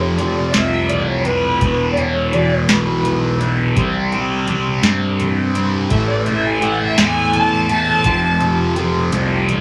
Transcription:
Already playing: F1 F2 C3 F3
0.00 C#5, low conga
0.12 C#5
0.18 F2 C3 F3 D5, closed hi-hat, high conga
0.37 low conga
0.53 C2 F2 C3 F3 E5, snare, closed hi-hat
0.89 D5, closed hi-hat, high conga, low conga
1.09 C#5, high conga
1.25 C3 F3 B4, closed hi-hat, low conga
1.44 low conga
1.61 E1 E2 B2 E3, kick, closed hi-hat, high conga
1.92 D5
1.97 B2 E3 C#5, closed hi-hat, low conga
2.33 E2 B2 E3 D5, closed hi-hat, high conga, low conga
2.51 C#5, low conga
2.62 C#5
2.69 B1 E2 B2 E3 B4, snare, closed hi-hat
3.04 closed hi-hat, high conga, low conga
3.40 B2 E3, closed hi-hat
3.58 low conga
3.75 C2 C3 G3 C4, kick, closed hi-hat, high conga
4.12 G3 C4, closed hi-hat, low conga
4.47 C3 G3 C4, closed hi-hat, high conga, low conga
4.67 low conga
4.83 G2 C3 G3 C4, snare, closed hi-hat
5.20 closed hi-hat, high conga, low conga
5.54 G3 C4, closed hi-hat
5.73 low conga
5.90 A1 A2 E3 A3 E5, kick, closed hi-hat, high conga
6.10 D5
6.26 E3 A3 E5, closed hi-hat, low conga
6.47 G#5
6.60 A2 E3 A3, closed hi-hat, low conga
6.65 F#5
6.81 low conga
6.86 E5
6.97 E2 A2 E3 A3, snare, closed hi-hat
7.02 G#5
7.33 closed hi-hat, high conga, low conga
7.38 A5
7.68 E3 A3 A5, closed hi-hat
7.88 low conga
8.04 F1 F2 C3 F3, kick, closed hi-hat, high conga, low conga
8.40 C3 F3, closed hi-hat, low conga
8.76 F2 C3 F3, closed hi-hat, high conga
8.95 low conga
9.12 C2 F2 C3 F3, closed hi-hat
9.49 closed hi-hat, high conga, low conga

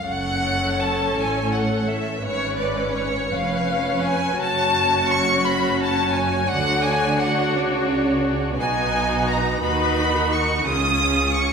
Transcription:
0.04 F#1 F#2 C#4 A4 C#5 F#5
0.80 A5
1.15 A1 A2 G#5
1.52 F#5
1.87 E5
2.20 G#1 G#2 C#4 B4 C#5
2.57 D5
2.94 C#5
3.30 F1 F2 C#4 B4 C#5 F5
4.04 G#5
4.37 F#1 F#2 C#4 F#4 C#5 A5
5.09 C#6
5.44 B5
5.80 A5
6.14 G#5
6.48 D2 D3 D4 F#4 C#5 F#5
6.83 G#5
7.20 F#5
7.54 C#2 C#3
8.58 B1 B2 D#4 F#4 B4 G#5
9.27 A#5
9.62 D#2 D#3 D#4 F#4 B4 B5
10.14 A#4
10.31 C#6
10.65 C#2 C#3 C#4 F4 G#4 D#6
11.35 C#6

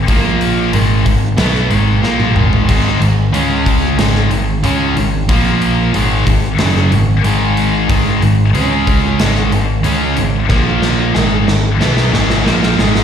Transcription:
0.06 A#1 A#2 F3 A#3, kick, open hi-hat
0.41 open hi-hat
0.72 G#1 G#2 D#3 G#3, open hi-hat
1.05 G#1 G#2 D#3, kick, open hi-hat
1.37 B1 B2 F#3 B3, snare, open hi-hat
1.55 snare
1.69 G#1 G#2 D#3 G#3, open hi-hat
2.02 A#1 A#2 F3 A#3, snare
2.20 high tom
2.34 G#1 G#2 D#3 G#3, mid tom
2.53 floor tom
2.67 G#1 G#2 D#3 G#3, kick, open hi-hat, crash
3.00 G#1 G#2 D#3, open hi-hat
3.33 C#2 C#3 G#3 C#4, open hi-hat
3.66 kick, open hi-hat
3.98 G#1 G#2 D#3 G#3, snare, open hi-hat
4.15 snare
4.30 G#1 G#2 D#3, open hi-hat
4.64 C#2 C#3 G#3 C#4, open hi-hat
4.96 G#1 G#2 D#3, open hi-hat
5.29 A#1 A#2 F3 A#3, kick, open hi-hat
5.62 open hi-hat
5.93 G#1 G#2 D#3 G#3, open hi-hat
6.26 G#1 G#2 D#3, kick, open hi-hat
6.59 F#1 F#2 C#3 F#3, snare, open hi-hat
6.76 snare
6.91 G#1 G#2 D#3, open hi-hat
7.24 G#1 G#2 D#3 G#3, open hi-hat
7.57 open hi-hat
7.89 G#1 G#2 D#3 G#3, kick, open hi-hat
8.22 G#1 G#2 D#3, open hi-hat
8.53 C#2 C#3 G#3 C#4, open hi-hat
8.87 kick, open hi-hat
9.18 G#1 G#2 D#3 G#3, snare, open hi-hat
9.36 snare
9.52 G#1 G#2 D#3, open hi-hat
9.84 C#2 C#3 G#3 C#4, open hi-hat
10.16 G#1 G#2 D#3, open hi-hat
10.49 A#1 A#2 F3 A#3, kick, snare
10.82 snare
11.14 G#1 G#2 D#3 G#3, snare
11.46 G#1 G#2 D#3, snare
11.79 B1 B2 F#3 B3, snare
11.97 snare
12.12 G#1 G#2 D#3 G#3, snare
12.30 snare
12.44 A#1 A#2 F3 A#3, snare
12.63 snare
12.77 G#1 G#2 D#3 G#3, snare
12.96 snare

